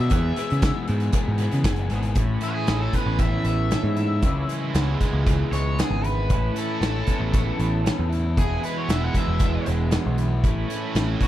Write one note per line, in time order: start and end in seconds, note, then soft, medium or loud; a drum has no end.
0.00 0.09 B2 loud
0.00 0.10 F#3 medium
0.00 0.13 B3 medium
0.00 0.11 D4 medium
0.00 0.11 F#4 medium
0.00 0.84 E5 medium
0.10 0.35 E2 loud
0.10 0.31 E2 loud
0.10 0.36 B2 loud
0.10 0.37 E3 loud
0.10 0.37 G#3 loud
0.10 0.37 E4 loud
0.10 kick loud
0.10 closed hi-hat medium
0.14 0.37 B3 loud
0.14 0.39 G#4 loud
0.36 0.62 E2 medium
0.36 0.62 B2 medium
0.36 0.63 E3 medium
0.36 0.63 G#3 medium
0.36 0.63 B3 medium
0.36 0.62 E4 medium
0.36 0.64 G#4 loud
0.36 closed hi-hat medium
0.50 0.71 C#3 medium
0.50 closed hi-hat soft
0.62 0.86 E2 medium
0.62 0.87 B2 medium
0.62 0.88 E3 medium
0.62 0.88 G#3 medium
0.62 0.89 B3 medium
0.62 0.87 E4 loud
0.62 0.90 G#4 loud
0.62 kick loud
0.62 snare loud
0.62 closed hi-hat loud
0.87 1.12 E2 medium
0.87 1.09 G#2 loud
0.87 1.13 B2 medium
0.87 1.13 E3 loud
0.87 1.13 G#3 loud
0.87 1.14 B3 loud
0.87 1.14 E4 loud
0.87 1.15 G#4 loud
0.87 closed hi-hat medium
1.00 closed hi-hat soft
1.13 1.38 E2 medium
1.13 1.39 B2 medium
1.13 1.39 E3 medium
1.13 1.40 G#3 medium
1.13 1.41 B3 medium
1.13 1.39 E4 medium
1.13 1.41 G#4 medium
1.13 kick loud
1.13 closed hi-hat loud
1.28 1.47 G#2 medium
1.38 1.62 E2 medium
1.38 1.63 B2 loud
1.38 1.64 E3 loud
1.38 1.64 G#3 loud
1.38 1.65 B3 loud
1.38 1.65 E4 loud
1.38 closed hi-hat medium
1.42 1.66 G#4 loud
1.51 1.63 C#3 medium
1.51 closed hi-hat soft
1.64 1.88 F#1 medium
1.64 1.88 E2 medium
1.64 1.89 B2 medium
1.64 1.90 E3 medium
1.64 1.90 G#3 medium
1.64 1.91 B3 medium
1.64 1.90 E4 medium
1.64 1.91 G#4 medium
1.64 kick loud
1.64 snare loud
1.64 closed hi-hat loud
1.76 closed hi-hat soft
1.90 2.14 G#1 medium
1.90 2.15 E2 medium
1.90 2.15 B2 medium
1.90 2.15 E3 medium
1.90 2.15 G#3 medium
1.90 2.16 B3 medium
1.90 2.15 E4 medium
1.90 2.16 G#4 loud
1.90 snare soft
1.90 closed hi-hat medium
2.03 closed hi-hat soft
2.15 2.36 A1 medium
2.15 3.45 A2 medium
2.15 4.22 E3 medium
2.15 4.23 A3 medium
2.15 4.24 C#4 medium
2.15 4.24 E4 medium
2.15 kick loud
2.15 closed hi-hat medium
2.41 3.96 E4 medium
2.41 2.54 F#4 medium
2.41 closed hi-hat medium
2.54 2.80 G#4 medium
2.67 2.88 A1 medium
2.67 3.71 C#4 medium
2.67 snare loud
2.67 closed hi-hat medium
2.82 2.94 A4 medium
2.93 3.44 B3 medium
2.93 3.19 B4 medium
2.93 kick medium
2.93 closed hi-hat medium
3.06 3.36 A1 medium
3.19 5.27 E3 medium
3.19 3.45 E5 medium
3.19 kick loud
3.19 closed hi-hat medium
3.45 3.74 A1 medium
3.45 4.26 B3 medium
3.45 4.97 E5 medium
3.45 closed hi-hat medium
3.71 4.74 C#4 medium
3.71 snare loud
3.71 closed hi-hat medium
3.84 4.24 G#2 medium
3.97 4.47 E4 medium
3.97 closed hi-hat medium
4.22 4.43 C#2 loud
4.22 5.52 C#3 medium
4.22 6.29 E3 medium
4.22 6.30 G#3 medium
4.22 6.30 C#4 medium
4.22 6.31 E4 medium
4.22 kick loud
4.22 closed hi-hat medium
4.47 6.03 E4 medium
4.47 closed hi-hat medium
4.74 4.95 C#2 medium
4.74 5.78 B3 medium
4.74 snare loud
4.74 closed hi-hat medium
5.01 5.52 G#3 medium
5.01 kick medium
5.01 closed hi-hat medium
5.13 5.43 C#2 medium
5.26 7.32 E3 medium
5.26 kick loud
5.26 closed hi-hat medium
5.52 5.81 C#2 medium
5.52 6.30 G#3 medium
5.52 5.78 C#5 medium
5.52 closed hi-hat medium
5.78 6.32 B3 medium
5.78 6.05 G#4 medium
5.78 snare loud
5.78 closed hi-hat medium
5.90 6.30 G#1 loud
6.03 6.54 E4 medium
6.03 6.55 B4 medium
6.03 closed hi-hat medium
6.29 6.50 A1 loud
6.29 7.59 A2 medium
6.29 8.37 E3 medium
6.29 8.37 A3 medium
6.29 8.37 C#4 medium
6.29 8.39 E4 medium
6.29 kick loud
6.29 closed hi-hat medium
6.55 8.09 E4 medium
6.55 8.08 A4 medium
6.55 closed hi-hat medium
6.81 7.01 A1 medium
6.81 7.83 C#4 medium
6.81 snare loud
6.81 closed hi-hat medium
7.07 7.59 B3 medium
7.07 kick medium
7.07 closed hi-hat medium
7.20 7.50 A1 medium
7.32 9.42 E3 medium
7.32 kick loud
7.32 closed hi-hat medium
7.59 7.89 A1 medium
7.59 8.89 B3 medium
7.59 closed hi-hat medium
7.84 8.36 C#4 medium
7.84 snare loud
7.84 closed hi-hat medium
7.99 8.39 E2 medium
8.10 8.62 E4 medium
8.10 closed hi-hat medium
8.37 8.57 E1 loud
8.37 9.66 E2 medium
8.37 10.43 B2 medium
8.37 10.44 E3 medium
8.37 10.44 G#3 medium
8.37 10.46 B3 medium
8.37 10.46 E4 medium
8.37 8.63 G#4 medium
8.37 kick loud
8.37 closed hi-hat medium
8.62 10.19 E4 medium
8.62 8.76 B4 medium
8.62 closed hi-hat medium
8.77 8.89 C#5 medium
8.89 9.08 E1 medium
8.89 9.93 B3 medium
8.89 9.03 E5 medium
8.89 snare loud
8.89 closed hi-hat medium
9.05 9.16 F#5 medium
9.14 9.66 G#3 medium
9.14 9.66 E5 medium
9.14 kick medium
9.14 closed hi-hat medium
9.28 9.57 E1 medium
9.39 11.28 E3 medium
9.39 kick loud
9.39 closed hi-hat medium
9.66 9.97 E1 medium
9.66 10.44 G#3 medium
9.66 closed hi-hat medium
9.91 10.47 B3 medium
9.91 snare loud
9.91 closed hi-hat medium
10.06 10.44 B1 medium
10.18 10.68 E4 medium
10.18 closed hi-hat medium
10.44 10.63 A1 loud
10.44 11.28 A2 medium
10.44 11.28 E3 medium
10.44 11.28 A3 medium
10.44 11.28 C#4 medium
10.44 11.28 E4 medium
10.44 kick loud
10.44 closed hi-hat medium
10.68 11.28 E4 medium
10.68 closed hi-hat medium
10.95 11.15 A1 medium
10.95 11.28 C#4 medium
10.95 snare loud
10.95 closed hi-hat medium
11.20 11.28 B3 medium
11.20 11.28 G#4 medium
11.20 kick medium
11.20 closed hi-hat medium